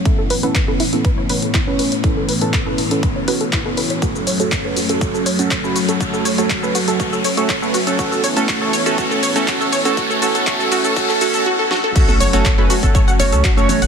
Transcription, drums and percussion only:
0.05 kick, closed hi-hat
0.30 open hi-hat
0.43 closed hi-hat
0.55 kick, clap, closed hi-hat
0.80 open hi-hat
0.93 closed hi-hat
1.05 kick, closed hi-hat
1.29 open hi-hat
1.42 closed hi-hat
1.54 kick, clap, closed hi-hat
1.79 open hi-hat
1.92 closed hi-hat
2.04 kick, closed hi-hat
2.29 open hi-hat
2.41 closed hi-hat
2.53 kick, clap, closed hi-hat
2.78 open hi-hat
2.91 closed hi-hat
3.03 kick, closed hi-hat
3.28 open hi-hat
3.41 closed hi-hat
3.53 kick, clap, closed hi-hat
3.77 open hi-hat
3.90 closed hi-hat
4.02 kick, closed hi-hat, shaker
4.16 shaker
4.27 open hi-hat, shaker
4.40 closed hi-hat, shaker
4.52 kick, clap, closed hi-hat, shaker
4.76 open hi-hat, shaker
4.89 closed hi-hat, shaker
5.01 kick, closed hi-hat, shaker
5.15 shaker
5.26 open hi-hat, shaker
5.39 closed hi-hat, shaker
5.51 kick, clap, closed hi-hat, shaker
5.64 shaker
5.76 open hi-hat, shaker
5.88 closed hi-hat, shaker
6.00 kick, closed hi-hat, shaker
6.14 shaker
6.25 open hi-hat, shaker
6.38 closed hi-hat, shaker
6.50 kick, clap, closed hi-hat, shaker
6.63 shaker
6.75 open hi-hat, shaker
6.88 closed hi-hat, shaker
7.00 kick, closed hi-hat, shaker
7.13 shaker
7.24 open hi-hat, shaker
7.37 closed hi-hat, shaker
7.49 kick, clap, closed hi-hat, shaker
7.63 shaker
7.74 open hi-hat, shaker
7.87 closed hi-hat, shaker
7.99 kick, closed hi-hat, shaker
8.12 shaker
8.24 open hi-hat, shaker
8.37 closed hi-hat, shaker
8.48 kick, clap, closed hi-hat, shaker
8.73 open hi-hat, shaker
8.86 closed hi-hat, shaker
8.98 kick, closed hi-hat, shaker
9.12 shaker
9.23 open hi-hat, shaker
9.36 closed hi-hat, shaker
9.48 kick, clap, closed hi-hat, shaker
9.61 shaker
9.72 open hi-hat, shaker
9.85 closed hi-hat, shaker
9.97 kick, closed hi-hat, shaker
10.11 shaker
10.22 open hi-hat, shaker
10.35 closed hi-hat, shaker
10.47 kick, clap, closed hi-hat, shaker
10.60 shaker
10.72 open hi-hat, shaker
10.84 closed hi-hat, shaker
10.96 kick, closed hi-hat, shaker
11.09 clap, shaker
11.21 open hi-hat, shaker
11.34 closed hi-hat, shaker
11.71 snare
11.96 kick, closed hi-hat, crash, shaker
12.09 high conga, shaker
12.20 open hi-hat, shaker
12.33 closed hi-hat, shaker
12.45 kick, clap, closed hi-hat, high conga, shaker
12.70 open hi-hat, shaker
12.83 kick, closed hi-hat, high conga, shaker
12.95 kick, closed hi-hat, shaker
13.08 shaker
13.20 open hi-hat, high conga, shaker
13.32 closed hi-hat, shaker
13.44 kick, clap, closed hi-hat, shaker
13.58 shaker
13.69 open hi-hat, high conga, low conga, shaker
13.82 closed hi-hat, shaker

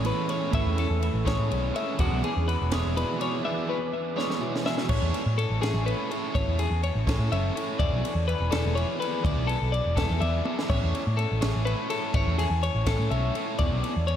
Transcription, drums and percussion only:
0.05 ride
0.29 ride
0.53 kick, ride
0.78 ride
1.03 ride
1.27 kick, snare, ride
1.52 ride
1.76 ride
1.99 kick, ride
2.24 ride
2.49 ride
2.72 snare, ride
2.97 ride
3.21 ride
4.19 snare
4.30 snare
4.56 snare
4.66 snare
4.78 snare
4.89 kick, crash
5.14 ride
5.39 ride
5.63 snare, ride
5.88 ride
6.11 ride
6.35 kick, ride
6.59 ride
6.83 ride
7.07 kick, snare, ride
7.32 ride
7.57 ride
7.80 kick, ride
8.05 ride
8.29 ride
8.52 snare, ride
8.77 ride
9.02 ride
9.25 kick, ride
9.49 ride
9.74 ride
9.97 kick, snare, ride
10.21 ride
10.45 high tom
10.59 snare
10.70 kick, crash
10.95 ride
11.19 ride
11.42 snare, ride
11.67 ride
11.90 ride
12.14 kick, ride
12.39 ride
12.63 ride
12.86 kick, snare, ride
13.11 ride
13.35 ride
13.59 kick, ride
13.84 ride
14.08 ride

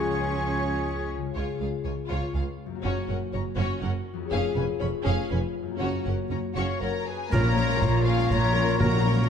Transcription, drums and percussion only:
7.32 concert bass drum, snare, crash
7.57 snare
7.70 snare
7.82 concert bass drum, snare
8.19 snare
8.30 concert bass drum, snare
8.56 snare
8.68 snare
8.80 concert bass drum, snare

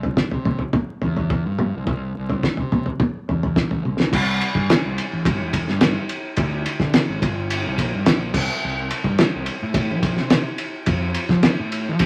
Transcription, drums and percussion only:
0.03 floor tom
0.17 kick, snare
0.31 floor tom
0.45 floor tom, mid tom
0.59 floor tom
0.73 kick, floor tom, mid tom
1.02 floor tom
1.16 floor tom
1.30 kick, floor tom
1.59 mid tom
1.87 kick, floor tom
2.30 floor tom
2.43 kick, snare
2.57 floor tom
2.72 floor tom, mid tom
2.86 floor tom
3.00 kick, floor tom, mid tom
3.29 floor tom
3.43 floor tom
3.56 kick, snare, floor tom
3.71 floor tom
3.85 high tom
4.00 snare
4.13 kick, crash
4.41 ride
4.55 kick
4.70 snare, ride
4.98 ride
5.25 kick, ride
5.53 kick, ride
5.68 snare
5.81 snare, ride
6.09 ride
6.36 kick, ride
6.66 ride
6.80 kick, snare
6.94 snare, ride
7.22 kick, ride
7.50 ride
7.78 kick, ride
8.06 snare, ride
8.34 kick, crash
8.91 ride
9.04 kick
9.18 snare, ride
9.46 ride
9.74 kick, ride
10.03 kick, ride
10.17 snare
10.30 snare, ride
10.58 ride
10.86 kick, ride
11.14 ride
11.29 kick, snare
11.43 snare, ride
11.72 ride
11.99 kick, ride

